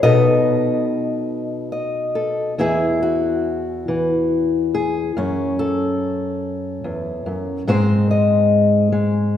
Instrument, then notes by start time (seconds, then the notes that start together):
steel-string acoustic guitar
0.03 B2 B3 D#4 A4 D#5
1.72 D#5
2.15 A4
2.58 E2 E3 E4 G#4
3.03 F#4
3.88 E3
4.74 G#4
5.17 F#2 C#4
5.59 A4
6.84 E2
7.26 F#2
7.67 G#2 G#3 C4 C5
8.11 D#5
8.92 G#3